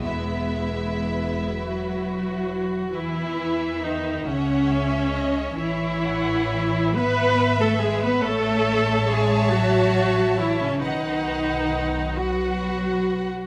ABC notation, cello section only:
X:1
M:6/8
L:1/16
Q:3/8=45
K:E
V:1 name="Cello section" clef=bass
E,,6 F,6 | E,4 D,2 C,6 | E,6 B,3 A, G, B, | A,4 G,2 F,4 E, C, |
D,6 F,6 |]